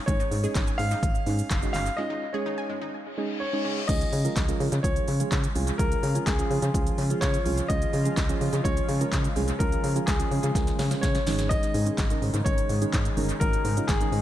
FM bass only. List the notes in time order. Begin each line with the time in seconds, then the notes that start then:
0.08 G#1
0.31 G#2
0.56 G#1
0.79 G#2
1.03 G#1
1.27 G#2
1.51 F#1
1.75 G1
3.89 C#2
4.13 C#3
4.37 C#2
4.60 C#3
4.72 C#3
4.84 C#2
5.08 C#3
5.32 C#3
5.56 C2
5.79 C#2
6.03 C#3
6.27 C#2
6.51 C#3
6.63 C#3
6.74 C#2
6.98 C#3
7.22 C#3
7.46 C2
7.70 C#2
7.94 C#3
8.17 C#2
8.41 C#3
8.53 C#3
8.65 C#2
8.89 C#3
9.13 C#3
9.36 C2
9.60 C#2
9.84 C#3
10.08 C#2
10.31 C#3
10.44 C#3
10.55 C#2
10.79 C#3
11.03 C#3
11.27 G#1
11.75 G#2
11.98 G#1
12.22 G#2
12.34 G#2
12.46 G#1
12.70 G#2
12.94 G#2
13.17 G1
13.41 G#1
13.65 G#2
13.89 G#1
14.12 G#2